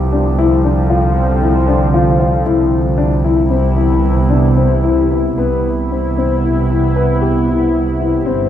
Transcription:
Already playing: C2 D3 F3 C4
0.12 D4
0.38 E4
0.64 D4
0.90 F4
1.42 E4
1.68 D4
1.94 F4
2.20 F4
2.45 C2 C3 B3 E4
2.98 D4
3.24 E4
3.50 C4
3.76 E4
4.30 D4
4.57 C4
4.84 E4
5.11 E4
5.37 C2 C3 B3 E4
5.91 C4
6.18 C4
6.44 E4
6.70 E4
6.96 B4
7.21 G4
7.48 E4
8.00 E4
8.26 G1 C4

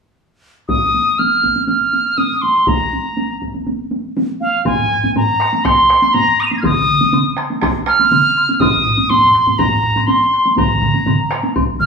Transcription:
0.68 D#6, taiko, taiko high
0.81 taiko high
0.94 taiko high
1.06 taiko high
1.19 F6, taiko high
1.32 taiko high
1.43 taiko, taiko high
1.56 taiko high
1.68 F6, taiko high
1.81 taiko high
1.93 taiko high
2.06 taiko high
2.17 D#6, taiko high
2.30 taiko high
2.41 C6, taiko high
2.56 taiko high
2.67 A#5, taiko, taiko high
2.81 taiko high
2.93 taiko high
3.05 taiko high
3.17 taiko high
3.30 taiko high
3.42 taiko, taiko high
3.54 taiko high
3.67 taiko high
3.79 taiko high
3.91 taiko high
4.05 taiko high
4.17 taiko high
4.29 taiko high
4.41 F5, taiko high
4.53 taiko high
4.65 G#5, taiko, taiko low-mid, taiko high, high woodblock
4.79 taiko low-mid
4.91 taiko low-mid
5.04 taiko low-mid, taiko high
5.16 A#5, taiko low-mid, taiko high, high woodblock
5.41 taiko rim, high woodblock
5.53 taiko high
5.64 C6, taiko rim, taiko, taiko high, high woodblock
5.90 taiko rim
6.02 taiko high, high woodblock
6.13 A#5, taiko low-mid, taiko high, high woodblock
6.40 D#6 F7, high woodblock
6.46 D#7
6.51 A#6 C7, taiko high
6.57 F6 G#6
6.63 D#6, taiko, taiko mid, taiko high, high woodblock
6.76 taiko mid
6.88 taiko mid
7.01 taiko mid, taiko high
7.12 taiko mid, taiko high, high woodblock
7.37 taiko rim, high woodblock
7.50 taiko high
7.62 taiko rim, taiko, taiko high, high woodblock
7.86 F6, taiko rim
7.99 taiko high, high woodblock
8.11 taiko mid, taiko high, high woodblock
8.37 high woodblock
8.49 taiko high
8.54 F6
8.60 D#6, taiko, taiko high, high woodblock
8.86 taiko low-mid
8.97 taiko high
9.09 C6, taiko low-mid, taiko high, high woodblock
9.23 taiko low-mid
9.35 taiko low-mid, high woodblock
9.47 taiko low-mid, taiko high
9.58 A#5, taiko, taiko low-mid, taiko high, high woodblock
9.72 taiko low-mid
9.83 taiko low-mid
9.96 taiko low-mid, taiko high, high woodblock
10.07 C6, taiko high, high woodblock
10.33 high woodblock
10.45 taiko high
10.57 A#5, taiko, taiko low-mid, taiko mid, taiko high, high woodblock
10.69 taiko low-mid, taiko mid
10.82 taiko low-mid, taiko mid
10.94 taiko high
11.06 taiko low-mid, taiko mid, taiko high, high woodblock
11.31 taiko rim, high woodblock
11.44 taiko high
11.56 taiko, taiko high, high woodblock
11.80 F6, taiko low-mid, taiko mid

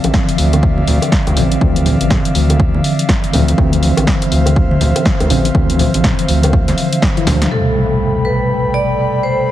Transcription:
Already playing: D5 E5 F5
0.03 A1 D3 E3 F3 C4, closed hi-hat, high bongo
0.14 kick, snare
0.29 closed hi-hat
0.38 D2, open hi-hat
0.53 closed hi-hat, high bongo, high conga
0.63 kick
0.78 high conga
0.87 D2, open hi-hat, low conga
1.02 closed hi-hat, high bongo
1.12 kick, snare
1.27 D2, closed hi-hat, high bongo
1.36 A1 D3 E3 F3 C4, open hi-hat, low conga
1.52 closed hi-hat
1.61 D2 D3 E3 F3 C4, kick
1.76 closed hi-hat, high conga
1.86 open hi-hat, low conga
2.00 A1 D3 E3 F3 C4, closed hi-hat
2.10 kick, snare, low conga
2.25 closed hi-hat
2.35 D2, open hi-hat
2.50 closed hi-hat, high bongo, high conga
2.60 kick
2.75 high conga
2.84 open hi-hat
2.99 closed hi-hat
3.09 kick, snare
3.24 closed hi-hat
3.33 D2 D3 E3 F3 C4 C5, open hi-hat, low conga
3.48 closed hi-hat
3.58 D2 D3 E3 F3 C4, kick
3.72 closed hi-hat, high conga
3.83 open hi-hat
3.97 A1 D3 E3 F3 C4, closed hi-hat, high bongo
4.07 kick, snare
4.22 closed hi-hat
4.32 D2, open hi-hat
4.46 closed hi-hat, high bongo, high conga
4.56 kick
4.71 high conga
4.81 D2, open hi-hat, low conga
4.96 closed hi-hat, high bongo
5.06 kick, snare
5.20 D2, closed hi-hat, high bongo
5.30 A1 D3 E3 F3 C4, open hi-hat, low conga
5.45 closed hi-hat
5.54 D2 D3 E3 F3 C4, kick
5.70 closed hi-hat, high conga
5.79 open hi-hat, low conga
5.93 A1 D3 E3 F3 C4, closed hi-hat
6.04 kick, snare, low conga
6.19 closed hi-hat
6.28 D2, open hi-hat
6.43 closed hi-hat, high bongo, high conga
6.53 kick
6.68 snare, closed hi-hat, high conga
6.78 open hi-hat
6.93 closed hi-hat
7.02 kick, snare
7.17 D3 E3 F3 E4, closed hi-hat
7.26 D2 D3 E3 F3 D4, snare, open hi-hat, high bongo, low conga
7.42 snare, closed hi-hat
7.51 B2 C3 G3 A3 A4 G5 B5, impact
8.25 B4
8.74 D5
9.23 C5

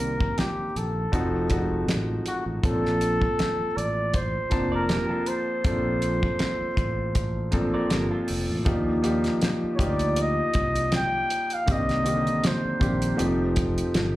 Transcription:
Already playing: C2 D#3 A#3 C4 D4 G4 A#4
0.00 closed hi-hat
0.20 kick
0.38 G4, snare, closed hi-hat
0.58 muted fingered electric bass stroke
0.76 A#1 A4, closed hi-hat
1.12 F1 F3 A3 C4 D#4 F#4, kick, closed hi-hat
1.50 F3 G#3 C4 D#4 F#4, kick, closed hi-hat
1.57 A3
1.88 A1, snare, closed hi-hat
2.26 F#4, closed hi-hat
2.46 A1
2.63 A#1 F3 A#3 C4 C#4 A4, kick, closed hi-hat
2.71 D4
2.86 snare
3.01 closed hi-hat
3.22 kick
3.39 snare, closed hi-hat
3.60 muted fingered electric bass stroke
3.77 A1 D5, closed hi-hat
4.14 C5, kick, closed hi-hat
4.50 F1 F3 A#3 C4 D4 A5, kick, closed hi-hat
4.72 A#4 D5
4.89 G4 A#4, snare, closed hi-hat
5.09 F4 A4
5.26 C5, closed hi-hat
5.64 A#1 F3 A#3 C4 D4 A4, kick, closed hi-hat
6.02 closed hi-hat
6.23 kick
6.39 snare, closed hi-hat
6.62 muted fingered electric bass stroke
6.77 A1, kick, closed hi-hat
7.15 kick, closed hi-hat
7.51 F3 A#3 C4 D4 A4, kick, closed hi-hat
7.74 A#4 D5
7.90 G1 G4 A#4, snare, closed hi-hat
8.11 F4 A4
8.28 F1, open hi-hat
8.50 A1
8.65 D#2 F3 A#3 D4 D#4 G4, kick, closed hi-hat
9.02 F3 A#3 D4 D#4 G4, closed hi-hat
9.24 snare, closed hi-hat
9.42 snare, closed hi-hat
9.64 muted fingered electric bass stroke
9.75 F3 A#3 D#4 F4 G4 C#5, kick
9.79 D2, closed hi-hat
9.84 D5
9.99 closed hi-hat
10.16 closed hi-hat
10.21 D#5
10.54 C2, kick, closed hi-hat
10.75 closed hi-hat
10.92 snare, closed hi-hat
10.96 G5
11.30 closed hi-hat
11.50 F5, closed hi-hat
11.66 C2 D#3 A#3 C4 D4 G4, kick, closed hi-hat
11.72 D#5
11.89 snare, closed hi-hat
12.04 D3 D#3 A#3 C4 G4, closed hi-hat
12.27 closed hi-hat
12.44 C5, snare, closed hi-hat
12.65 muted fingered electric bass stroke
12.79 A#1 D#3 A#3 C4 D4 G4, kick, closed hi-hat
13.02 closed hi-hat
13.16 F1 F3 A3 C4 D#4 G4, closed hi-hat
13.56 kick, closed hi-hat
13.78 closed hi-hat
13.94 G1, snare, closed hi-hat

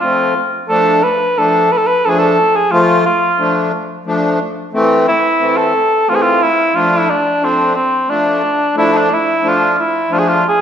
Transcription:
0.00 F3 A3 C4 F4
0.68 F3 A3 D4 A4
1.03 B4
1.37 F3 A3 D4 A4
1.72 B4
1.77 A4
1.87 B4
2.05 F3 A3 D4 A4
2.10 G#4
2.19 A4
2.56 G#4
2.71 F3 A3 F4
3.06 F4
3.38 F3 A3 D4
4.05 F3 A3 D4
4.73 E3 A3 C4
5.08 E4
5.39 E3 A3 C4
5.57 A4
6.07 E3 A3 C4 F4
6.15 G#4
6.22 F4
6.43 E4
6.74 F3 A3 D4 F4
6.94 E4
7.09 D4
7.41 F3 A3 C4 D4
7.75 C4
8.08 F3 A3 D4
8.75 F3 A3 D4 E4
8.96 D4
9.14 E4
9.42 F3 A3 D4
9.48 F4
9.72 F4
9.80 E4
10.09 F3 A3 D4 F4
10.19 G#4
10.28 F4
10.48 G#4

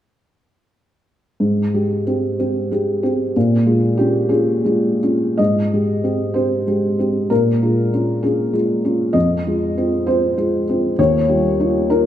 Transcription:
1.40 G#2
1.74 G#3 G4
2.07 C4 G4
2.39 C4 G4
2.71 G#3 G4
3.03 C4 G4
3.36 A#2
3.66 G#3 F4
3.98 C#4 F4 G4
4.29 C#4 F4 G#4
4.65 G#3 F4
5.03 C#4 F4
5.38 G#2 D#5
5.73 G#3 G4
6.03 C4 G4
6.34 C4 G4 C5
6.67 G#3 G4
6.99 C4 G4
7.30 A#2 A#4
7.63 G#3 F4
7.93 C#4 F4
8.23 C#4 F4 G#4
8.53 G#3 F4
8.85 C#4 F4
9.13 F2 D#5
9.47 G#3 F4
9.78 C4 F4
10.07 C4 F4 C5
10.37 G#3 F4
10.69 C4 F4
10.99 D#2 C#5
11.29 G3 F4
11.60 D#4 F4
11.90 D#4 F4 A#4

